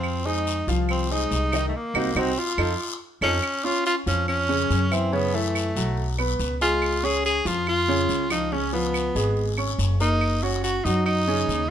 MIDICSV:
0, 0, Header, 1, 5, 480
1, 0, Start_track
1, 0, Tempo, 424028
1, 43, Time_signature, 4, 2, 24, 8
1, 13248, End_track
2, 0, Start_track
2, 0, Title_t, "Grand piano"
2, 0, Program_c, 0, 0
2, 0, Note_on_c, 0, 53, 78
2, 0, Note_on_c, 0, 65, 80
2, 0, Note_on_c, 0, 77, 78
2, 197, Note_off_c, 0, 53, 0
2, 198, Note_off_c, 0, 65, 0
2, 201, Note_off_c, 0, 77, 0
2, 285, Note_on_c, 0, 56, 72
2, 288, Note_on_c, 0, 68, 73
2, 294, Note_on_c, 0, 72, 71
2, 679, Note_off_c, 0, 56, 0
2, 681, Note_off_c, 0, 68, 0
2, 684, Note_off_c, 0, 72, 0
2, 772, Note_on_c, 0, 53, 82
2, 775, Note_on_c, 0, 65, 78
2, 778, Note_on_c, 0, 77, 80
2, 1163, Note_off_c, 0, 53, 0
2, 1165, Note_off_c, 0, 65, 0
2, 1167, Note_off_c, 0, 77, 0
2, 1253, Note_on_c, 0, 56, 72
2, 1257, Note_on_c, 0, 68, 74
2, 1261, Note_on_c, 0, 72, 67
2, 1644, Note_off_c, 0, 56, 0
2, 1647, Note_off_c, 0, 68, 0
2, 1649, Note_off_c, 0, 72, 0
2, 1734, Note_on_c, 0, 51, 79
2, 1736, Note_on_c, 0, 63, 80
2, 1740, Note_on_c, 0, 75, 81
2, 1928, Note_off_c, 0, 51, 0
2, 1929, Note_off_c, 0, 63, 0
2, 1931, Note_off_c, 0, 75, 0
2, 2210, Note_on_c, 0, 60, 89
2, 2210, Note_on_c, 0, 66, 88
2, 2211, Note_on_c, 0, 63, 89
2, 2362, Note_off_c, 0, 60, 0
2, 2362, Note_off_c, 0, 66, 0
2, 2363, Note_off_c, 0, 63, 0
2, 2446, Note_on_c, 0, 60, 92
2, 2447, Note_on_c, 0, 63, 91
2, 2448, Note_on_c, 0, 66, 93
2, 2600, Note_off_c, 0, 60, 0
2, 2601, Note_off_c, 0, 63, 0
2, 2601, Note_off_c, 0, 66, 0
2, 2925, Note_on_c, 0, 65, 89
2, 2925, Note_on_c, 0, 69, 86
2, 2926, Note_on_c, 0, 63, 84
2, 3080, Note_off_c, 0, 63, 0
2, 3080, Note_off_c, 0, 65, 0
2, 3080, Note_off_c, 0, 69, 0
2, 3644, Note_on_c, 0, 65, 85
2, 3647, Note_on_c, 0, 63, 84
2, 3647, Note_on_c, 0, 69, 88
2, 3799, Note_off_c, 0, 65, 0
2, 3801, Note_off_c, 0, 63, 0
2, 3801, Note_off_c, 0, 69, 0
2, 4123, Note_on_c, 0, 61, 77
2, 4127, Note_on_c, 0, 73, 68
2, 4131, Note_on_c, 0, 85, 73
2, 4519, Note_off_c, 0, 61, 0
2, 4521, Note_off_c, 0, 73, 0
2, 4523, Note_off_c, 0, 85, 0
2, 4602, Note_on_c, 0, 53, 75
2, 4604, Note_on_c, 0, 65, 70
2, 4609, Note_on_c, 0, 77, 72
2, 4998, Note_off_c, 0, 53, 0
2, 4999, Note_off_c, 0, 65, 0
2, 5002, Note_off_c, 0, 77, 0
2, 5082, Note_on_c, 0, 61, 79
2, 5083, Note_on_c, 0, 49, 84
2, 5088, Note_on_c, 0, 73, 84
2, 5478, Note_off_c, 0, 49, 0
2, 5478, Note_off_c, 0, 61, 0
2, 5482, Note_off_c, 0, 73, 0
2, 5559, Note_on_c, 0, 52, 72
2, 5564, Note_on_c, 0, 64, 72
2, 5567, Note_on_c, 0, 76, 68
2, 5760, Note_off_c, 0, 52, 0
2, 5762, Note_off_c, 0, 64, 0
2, 5764, Note_off_c, 0, 76, 0
2, 5800, Note_on_c, 0, 49, 82
2, 5802, Note_on_c, 0, 61, 86
2, 5806, Note_on_c, 0, 73, 80
2, 6000, Note_off_c, 0, 49, 0
2, 6001, Note_off_c, 0, 61, 0
2, 6003, Note_off_c, 0, 73, 0
2, 6040, Note_on_c, 0, 52, 69
2, 6045, Note_on_c, 0, 64, 76
2, 6048, Note_on_c, 0, 76, 75
2, 6436, Note_off_c, 0, 52, 0
2, 6439, Note_off_c, 0, 64, 0
2, 6441, Note_off_c, 0, 76, 0
2, 6523, Note_on_c, 0, 54, 73
2, 6524, Note_on_c, 0, 66, 78
2, 6529, Note_on_c, 0, 78, 75
2, 6918, Note_off_c, 0, 54, 0
2, 6919, Note_off_c, 0, 66, 0
2, 6921, Note_off_c, 0, 78, 0
2, 7001, Note_on_c, 0, 59, 73
2, 7006, Note_on_c, 0, 83, 75
2, 7007, Note_on_c, 0, 71, 74
2, 7396, Note_off_c, 0, 59, 0
2, 7400, Note_off_c, 0, 71, 0
2, 7400, Note_off_c, 0, 83, 0
2, 7484, Note_on_c, 0, 56, 78
2, 7486, Note_on_c, 0, 68, 74
2, 7489, Note_on_c, 0, 80, 72
2, 7878, Note_off_c, 0, 56, 0
2, 7879, Note_off_c, 0, 68, 0
2, 7881, Note_off_c, 0, 80, 0
2, 7960, Note_on_c, 0, 61, 74
2, 7965, Note_on_c, 0, 73, 78
2, 7966, Note_on_c, 0, 85, 76
2, 8355, Note_off_c, 0, 61, 0
2, 8358, Note_off_c, 0, 73, 0
2, 8359, Note_off_c, 0, 85, 0
2, 8436, Note_on_c, 0, 53, 74
2, 8439, Note_on_c, 0, 65, 74
2, 8444, Note_on_c, 0, 77, 72
2, 8833, Note_off_c, 0, 53, 0
2, 8835, Note_off_c, 0, 65, 0
2, 8837, Note_off_c, 0, 77, 0
2, 8920, Note_on_c, 0, 49, 80
2, 8928, Note_on_c, 0, 61, 86
2, 8929, Note_on_c, 0, 73, 85
2, 9315, Note_off_c, 0, 49, 0
2, 9320, Note_off_c, 0, 61, 0
2, 9321, Note_off_c, 0, 73, 0
2, 9401, Note_on_c, 0, 53, 72
2, 9403, Note_on_c, 0, 65, 76
2, 9410, Note_on_c, 0, 77, 73
2, 9599, Note_off_c, 0, 53, 0
2, 9600, Note_off_c, 0, 65, 0
2, 9604, Note_off_c, 0, 77, 0
2, 9645, Note_on_c, 0, 49, 78
2, 9650, Note_on_c, 0, 61, 88
2, 9652, Note_on_c, 0, 73, 81
2, 9841, Note_off_c, 0, 49, 0
2, 9844, Note_off_c, 0, 61, 0
2, 9845, Note_off_c, 0, 73, 0
2, 9880, Note_on_c, 0, 53, 73
2, 9884, Note_on_c, 0, 65, 75
2, 9886, Note_on_c, 0, 77, 73
2, 10275, Note_off_c, 0, 53, 0
2, 10277, Note_off_c, 0, 65, 0
2, 10278, Note_off_c, 0, 77, 0
2, 10363, Note_on_c, 0, 56, 73
2, 10365, Note_on_c, 0, 68, 77
2, 10370, Note_on_c, 0, 80, 71
2, 10756, Note_off_c, 0, 56, 0
2, 10758, Note_off_c, 0, 68, 0
2, 10760, Note_off_c, 0, 80, 0
2, 10843, Note_on_c, 0, 61, 70
2, 10851, Note_on_c, 0, 73, 74
2, 10854, Note_on_c, 0, 85, 74
2, 11236, Note_off_c, 0, 61, 0
2, 11241, Note_off_c, 0, 73, 0
2, 11243, Note_off_c, 0, 85, 0
2, 11322, Note_on_c, 0, 58, 73
2, 11325, Note_on_c, 0, 70, 74
2, 11328, Note_on_c, 0, 82, 70
2, 11716, Note_off_c, 0, 58, 0
2, 11717, Note_off_c, 0, 70, 0
2, 11719, Note_off_c, 0, 82, 0
2, 11806, Note_on_c, 0, 61, 74
2, 11808, Note_on_c, 0, 73, 75
2, 11814, Note_on_c, 0, 85, 74
2, 12198, Note_off_c, 0, 61, 0
2, 12199, Note_off_c, 0, 73, 0
2, 12203, Note_off_c, 0, 85, 0
2, 12291, Note_on_c, 0, 54, 77
2, 12293, Note_on_c, 0, 66, 74
2, 12296, Note_on_c, 0, 78, 73
2, 12681, Note_off_c, 0, 54, 0
2, 12682, Note_off_c, 0, 66, 0
2, 12684, Note_off_c, 0, 78, 0
2, 12763, Note_on_c, 0, 49, 87
2, 12765, Note_on_c, 0, 61, 83
2, 12769, Note_on_c, 0, 73, 86
2, 13156, Note_off_c, 0, 49, 0
2, 13157, Note_off_c, 0, 61, 0
2, 13160, Note_off_c, 0, 73, 0
2, 13248, End_track
3, 0, Start_track
3, 0, Title_t, "Tenor saxophone"
3, 0, Program_c, 1, 66
3, 0, Note_on_c, 1, 60, 93
3, 292, Note_on_c, 1, 63, 95
3, 309, Note_off_c, 1, 60, 0
3, 769, Note_off_c, 1, 63, 0
3, 1022, Note_on_c, 1, 60, 84
3, 1265, Note_on_c, 1, 63, 94
3, 1282, Note_off_c, 1, 60, 0
3, 1893, Note_off_c, 1, 63, 0
3, 1900, Note_on_c, 1, 57, 67
3, 1989, Note_on_c, 1, 58, 87
3, 2006, Note_off_c, 1, 57, 0
3, 2472, Note_on_c, 1, 60, 82
3, 2489, Note_off_c, 1, 58, 0
3, 2701, Note_on_c, 1, 65, 86
3, 2718, Note_off_c, 1, 60, 0
3, 3414, Note_off_c, 1, 65, 0
3, 3655, Note_on_c, 1, 61, 88
3, 4124, Note_on_c, 1, 65, 102
3, 4141, Note_off_c, 1, 61, 0
3, 4366, Note_off_c, 1, 65, 0
3, 4372, Note_on_c, 1, 65, 100
3, 4479, Note_off_c, 1, 65, 0
3, 4613, Note_on_c, 1, 61, 89
3, 4834, Note_off_c, 1, 61, 0
3, 4853, Note_on_c, 1, 61, 102
3, 5582, Note_on_c, 1, 60, 85
3, 5599, Note_off_c, 1, 61, 0
3, 5812, Note_on_c, 1, 59, 92
3, 5829, Note_off_c, 1, 60, 0
3, 6053, Note_on_c, 1, 57, 84
3, 6070, Note_off_c, 1, 59, 0
3, 7009, Note_off_c, 1, 57, 0
3, 7491, Note_on_c, 1, 65, 96
3, 7975, Note_on_c, 1, 68, 102
3, 7992, Note_off_c, 1, 65, 0
3, 8207, Note_off_c, 1, 68, 0
3, 8214, Note_on_c, 1, 68, 106
3, 8456, Note_on_c, 1, 65, 95
3, 8473, Note_off_c, 1, 68, 0
3, 8690, Note_off_c, 1, 65, 0
3, 8698, Note_on_c, 1, 65, 106
3, 9365, Note_off_c, 1, 65, 0
3, 9410, Note_on_c, 1, 63, 82
3, 9644, Note_on_c, 1, 61, 95
3, 9661, Note_off_c, 1, 63, 0
3, 9876, Note_off_c, 1, 61, 0
3, 9883, Note_on_c, 1, 59, 84
3, 10797, Note_off_c, 1, 59, 0
3, 11328, Note_on_c, 1, 63, 93
3, 11803, Note_on_c, 1, 66, 92
3, 11820, Note_off_c, 1, 63, 0
3, 12035, Note_off_c, 1, 66, 0
3, 12042, Note_on_c, 1, 66, 98
3, 12276, Note_on_c, 1, 63, 87
3, 12293, Note_off_c, 1, 66, 0
3, 12506, Note_off_c, 1, 63, 0
3, 12512, Note_on_c, 1, 63, 99
3, 13248, Note_off_c, 1, 63, 0
3, 13248, End_track
4, 0, Start_track
4, 0, Title_t, "Upright bass"
4, 0, Program_c, 2, 32
4, 0, Note_on_c, 2, 41, 86
4, 691, Note_off_c, 2, 41, 0
4, 760, Note_on_c, 2, 36, 85
4, 1438, Note_off_c, 2, 36, 0
4, 1481, Note_on_c, 2, 36, 89
4, 1930, Note_off_c, 2, 36, 0
4, 2197, Note_on_c, 2, 36, 87
4, 2380, Note_off_c, 2, 36, 0
4, 2436, Note_on_c, 2, 36, 97
4, 2620, Note_off_c, 2, 36, 0
4, 2917, Note_on_c, 2, 41, 87
4, 3100, Note_off_c, 2, 41, 0
4, 3636, Note_on_c, 2, 41, 94
4, 3820, Note_off_c, 2, 41, 0
4, 4600, Note_on_c, 2, 41, 88
4, 5279, Note_off_c, 2, 41, 0
4, 5320, Note_on_c, 2, 42, 85
4, 6454, Note_off_c, 2, 42, 0
4, 6519, Note_on_c, 2, 35, 90
4, 7197, Note_off_c, 2, 35, 0
4, 7238, Note_on_c, 2, 37, 86
4, 8372, Note_off_c, 2, 37, 0
4, 8437, Note_on_c, 2, 41, 92
4, 9115, Note_off_c, 2, 41, 0
4, 9157, Note_on_c, 2, 37, 88
4, 10290, Note_off_c, 2, 37, 0
4, 10358, Note_on_c, 2, 32, 90
4, 11035, Note_off_c, 2, 32, 0
4, 11076, Note_on_c, 2, 30, 85
4, 12209, Note_off_c, 2, 30, 0
4, 12282, Note_on_c, 2, 42, 88
4, 12957, Note_off_c, 2, 42, 0
4, 12998, Note_on_c, 2, 39, 89
4, 13248, Note_off_c, 2, 39, 0
4, 13248, End_track
5, 0, Start_track
5, 0, Title_t, "Drums"
5, 40, Note_on_c, 9, 75, 66
5, 48, Note_on_c, 9, 74, 65
5, 153, Note_off_c, 9, 75, 0
5, 162, Note_off_c, 9, 74, 0
5, 532, Note_on_c, 9, 73, 71
5, 645, Note_off_c, 9, 73, 0
5, 770, Note_on_c, 9, 73, 71
5, 883, Note_off_c, 9, 73, 0
5, 1005, Note_on_c, 9, 75, 65
5, 1007, Note_on_c, 9, 74, 68
5, 1118, Note_off_c, 9, 75, 0
5, 1120, Note_off_c, 9, 74, 0
5, 1489, Note_on_c, 9, 73, 66
5, 1602, Note_off_c, 9, 73, 0
5, 1725, Note_on_c, 9, 75, 69
5, 1730, Note_on_c, 9, 73, 66
5, 1838, Note_off_c, 9, 75, 0
5, 1843, Note_off_c, 9, 73, 0
5, 2206, Note_on_c, 9, 75, 95
5, 2214, Note_on_c, 9, 74, 88
5, 2319, Note_off_c, 9, 75, 0
5, 2327, Note_off_c, 9, 74, 0
5, 2450, Note_on_c, 9, 75, 98
5, 2451, Note_on_c, 9, 74, 88
5, 2563, Note_off_c, 9, 75, 0
5, 2564, Note_off_c, 9, 74, 0
5, 2922, Note_on_c, 9, 75, 94
5, 2932, Note_on_c, 9, 74, 91
5, 3035, Note_off_c, 9, 75, 0
5, 3045, Note_off_c, 9, 74, 0
5, 3646, Note_on_c, 9, 75, 92
5, 3651, Note_on_c, 9, 74, 93
5, 3759, Note_off_c, 9, 75, 0
5, 3764, Note_off_c, 9, 74, 0
5, 3883, Note_on_c, 9, 75, 66
5, 3888, Note_on_c, 9, 74, 66
5, 3996, Note_off_c, 9, 75, 0
5, 4001, Note_off_c, 9, 74, 0
5, 4367, Note_on_c, 9, 73, 69
5, 4480, Note_off_c, 9, 73, 0
5, 4609, Note_on_c, 9, 73, 71
5, 4723, Note_off_c, 9, 73, 0
5, 4846, Note_on_c, 9, 74, 70
5, 4847, Note_on_c, 9, 75, 64
5, 4960, Note_off_c, 9, 74, 0
5, 4961, Note_off_c, 9, 75, 0
5, 5327, Note_on_c, 9, 73, 71
5, 5440, Note_off_c, 9, 73, 0
5, 5566, Note_on_c, 9, 75, 68
5, 5568, Note_on_c, 9, 73, 67
5, 5679, Note_off_c, 9, 75, 0
5, 5681, Note_off_c, 9, 73, 0
5, 5810, Note_on_c, 9, 74, 73
5, 5924, Note_off_c, 9, 74, 0
5, 6285, Note_on_c, 9, 75, 64
5, 6290, Note_on_c, 9, 73, 70
5, 6398, Note_off_c, 9, 75, 0
5, 6403, Note_off_c, 9, 73, 0
5, 6525, Note_on_c, 9, 73, 71
5, 6638, Note_off_c, 9, 73, 0
5, 6763, Note_on_c, 9, 74, 66
5, 6876, Note_off_c, 9, 74, 0
5, 7001, Note_on_c, 9, 75, 66
5, 7115, Note_off_c, 9, 75, 0
5, 7239, Note_on_c, 9, 73, 70
5, 7352, Note_off_c, 9, 73, 0
5, 7486, Note_on_c, 9, 73, 68
5, 7599, Note_off_c, 9, 73, 0
5, 7719, Note_on_c, 9, 75, 70
5, 7723, Note_on_c, 9, 74, 71
5, 7832, Note_off_c, 9, 75, 0
5, 7836, Note_off_c, 9, 74, 0
5, 8206, Note_on_c, 9, 73, 70
5, 8320, Note_off_c, 9, 73, 0
5, 8445, Note_on_c, 9, 73, 77
5, 8558, Note_off_c, 9, 73, 0
5, 8683, Note_on_c, 9, 75, 63
5, 8685, Note_on_c, 9, 74, 68
5, 8796, Note_off_c, 9, 75, 0
5, 8798, Note_off_c, 9, 74, 0
5, 9160, Note_on_c, 9, 73, 72
5, 9273, Note_off_c, 9, 73, 0
5, 9400, Note_on_c, 9, 73, 70
5, 9400, Note_on_c, 9, 75, 71
5, 9513, Note_off_c, 9, 73, 0
5, 9513, Note_off_c, 9, 75, 0
5, 9645, Note_on_c, 9, 74, 69
5, 9759, Note_off_c, 9, 74, 0
5, 10122, Note_on_c, 9, 75, 66
5, 10124, Note_on_c, 9, 73, 71
5, 10235, Note_off_c, 9, 75, 0
5, 10237, Note_off_c, 9, 73, 0
5, 10369, Note_on_c, 9, 73, 69
5, 10482, Note_off_c, 9, 73, 0
5, 10605, Note_on_c, 9, 74, 68
5, 10719, Note_off_c, 9, 74, 0
5, 10838, Note_on_c, 9, 75, 64
5, 10952, Note_off_c, 9, 75, 0
5, 11084, Note_on_c, 9, 73, 72
5, 11198, Note_off_c, 9, 73, 0
5, 11324, Note_on_c, 9, 73, 68
5, 11437, Note_off_c, 9, 73, 0
5, 11561, Note_on_c, 9, 75, 67
5, 11564, Note_on_c, 9, 74, 72
5, 11674, Note_off_c, 9, 75, 0
5, 11677, Note_off_c, 9, 74, 0
5, 12044, Note_on_c, 9, 73, 71
5, 12157, Note_off_c, 9, 73, 0
5, 12289, Note_on_c, 9, 73, 75
5, 12402, Note_off_c, 9, 73, 0
5, 12523, Note_on_c, 9, 75, 65
5, 12524, Note_on_c, 9, 74, 68
5, 12636, Note_off_c, 9, 75, 0
5, 12638, Note_off_c, 9, 74, 0
5, 13010, Note_on_c, 9, 73, 69
5, 13124, Note_off_c, 9, 73, 0
5, 13248, End_track
0, 0, End_of_file